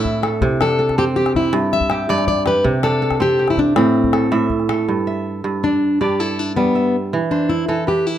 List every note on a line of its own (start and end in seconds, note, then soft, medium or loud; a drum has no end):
0.00 0.47 A2 medium
0.00 0.54 C4 medium
0.00 0.28 E4 medium
0.00 0.34 G4 medium
0.00 0.22 A4 medium
0.00 0.89 E5 medium
0.05 calabash thump medium
0.14 calabash click soft
0.23 0.78 A4 medium
0.23 calabash click medium
0.41 1.58 C3 medium
0.41 calabash thump medium
0.61 2.29 D4 medium
0.61 0.98 A4 loud
0.61 calabash click medium
0.79 2.11 A4 medium
0.89 calabash thump soft
0.89 calabash click soft
0.98 2.78 C4 medium
0.98 1.04 G4 loud
1.16 1.90 G4 medium
1.16 1.35 G4 medium
1.26 calabash click soft
1.35 1.53 E4 medium
1.35 calabash thump medium
1.53 2.08 G2 medium
1.53 calabash click medium
1.72 2.10 E5 loud
1.72 calabash click soft
1.80 calabash thump soft
1.90 2.45 G4 medium
1.90 calabash click medium
2.09 2.70 G2 medium
2.09 3.20 D5 medium
2.09 2.27 D5 loud
2.18 calabash click soft
2.27 2.47 D5 medium
2.27 calabash thump medium
2.37 calabash click soft
2.46 3.39 G4 medium
2.46 2.64 B4 medium
2.46 calabash click medium
2.64 3.81 C3 medium
2.64 calabash thump medium
2.83 4.51 D4 medium
2.83 3.21 A4 medium
2.83 calabash click medium
3.02 4.13 A4 medium
3.11 calabash thump soft
3.11 calabash click soft
3.20 5.00 C4 medium
3.20 3.47 G4 loud
3.39 4.80 G4 medium
3.48 3.59 E4 medium
3.48 calabash click soft
3.57 3.77 D4 medium
3.57 calabash thump medium
3.76 4.31 A2 medium
3.76 4.47 C4 medium
3.76 calabash click medium
3.95 calabash click soft
4.04 calabash thump soft
4.13 4.69 A4 medium
4.13 calabash click medium
4.31 4.93 A2 medium
4.31 5.07 E5 medium
4.31 calabash click soft
4.50 calabash thump medium
4.60 calabash click soft
4.69 6.01 A4 medium
4.69 calabash click medium
4.88 5.43 G2 medium
5.07 6.10 E5 medium
5.44 6.00 G2 medium
5.64 5.98 D4 medium
5.64 6.01 D5 medium
6.01 7.17 G2 medium
6.01 6.20 G4 medium
6.01 7.12 D5 medium
6.20 6.39 E4 medium
6.20 7.51 A4 medium
6.39 6.56 D4 medium
6.56 7.17 G3 medium
6.56 6.96 B3 medium
6.75 7.79 E5 medium
7.13 7.67 E3 medium
7.31 7.50 D4 medium
7.31 7.93 C5 soft
7.49 7.67 E4 medium
7.68 8.18 E3 medium
7.68 7.88 A4 medium
7.87 8.07 G4 medium
7.87 8.18 B4 soft
8.07 8.18 E4 medium